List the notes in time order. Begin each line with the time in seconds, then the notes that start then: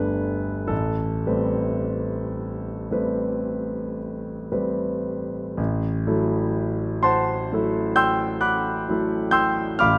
Already playing: G1 G3 A3 D4 A4 B4
0.68 A1 A4
1.27 G3 A3 C4 B4
2.91 G3 A3 C4 B4
4.52 G3 A3 C4 B4
5.57 A1
6.07 F#3 A3 E4 A4
7.03 C5 F#5 A5 C6
7.52 F#3 A3 E4 A4
7.96 G5 C6 E6 G6
8.41 F#5 B5 D6 F#6
8.89 F#3 A3 E4 A4
9.31 G5 C6 E6 G6
9.79 A1 F5 B5 D6 F6